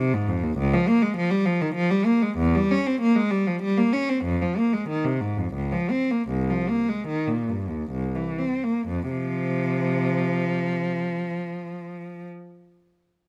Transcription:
0.00 C3
0.14 G#2
0.28 F2
0.43 D#2
0.58 C#2
0.74 F3
0.88 A#3
1.02 G#3
1.17 F3
1.31 G3
1.46 F3
1.61 D#3
1.75 F3
1.90 G3
2.06 A#3
2.22 G#3
2.38 E2
2.55 G3
2.71 C#4
2.87 C4
3.01 A#3
3.16 G#3
3.31 G3
3.47 F3
3.62 G3
3.78 A#3
3.93 C#4
4.09 C4
4.24 F2
4.42 F3
4.58 A#3
4.73 G#3
4.89 D#3
5.05 C3
5.21 G#2
5.37 F2
5.54 C#2
5.72 F3
5.91 C4
6.11 A#3
6.29 C2
6.49 F3
6.69 A#3
6.89 G#3
7.08 D#3
7.27 A#2
7.49 G2
7.69 D#2
7.91 C2
8.15 E3
8.39 C4
8.64 A#3
8.87 F2
9.11 C3 F3

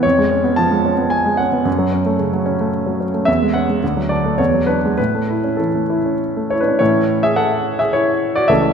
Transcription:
0.03 F2 C#5
0.19 G#3
0.31 C#4
0.44 B3
0.56 F3 A5
0.71 G#3
0.85 C#4
0.98 B3
1.10 G#5
1.26 G#3
1.37 C#4 F#5
1.52 B3
1.65 F#2
1.79 F#3
1.92 C#4
2.06 A3
2.19 C#3
2.33 F#3
2.46 C#4
2.60 A3
2.86 F#3
3.01 C#4
3.14 A3
3.25 E2 E5
3.42 G#3
3.54 C#4 F#5
3.70 G#3
3.84 D2
3.97 F#3
4.09 D4 D5
4.25 A3
4.38 E2 C#5
4.54 F#3
4.66 D4 B4
4.85 G#3
4.98 A2 B4
5.15 A3
5.30 E4
5.44 C#4
5.57 E3 A4
5.75 A3
5.90 E4
6.06 C#4
6.36 A3
6.50 E4 C#5
6.60 D4 B4
6.68 C#4
6.79 A2 E3 A3 C#4 E4 C#5
7.23 G#4 E5
7.36 A4 F#5
7.79 G#4 E5
7.93 E4 C#5
8.36 F#4 D5
8.48 C#2 E3 A3 C#4 A4 E5

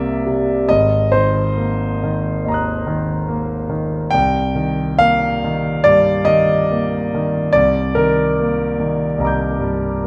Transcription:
Already playing: C2 C3 A#3 D5 E5
0.26 C3
0.69 G#1 D#5
1.12 D#3 C5
1.57 A#3
2.03 D#3
2.45 D#2 D#5 A#5
2.52 D#6 F#6
2.87 D#3
3.29 A#3
3.70 D#3
4.11 C2 G5
4.55 D#3
4.99 A#3 F5
5.44 D#3
5.84 G2 D5
6.25 D#3 D#5
6.71 A#3
7.15 D#3
7.53 C2 D5
7.95 D#3 A#4
8.40 A#3
8.80 D#3
9.18 C2 D#5 A#5
9.25 D6 G6
9.60 G2

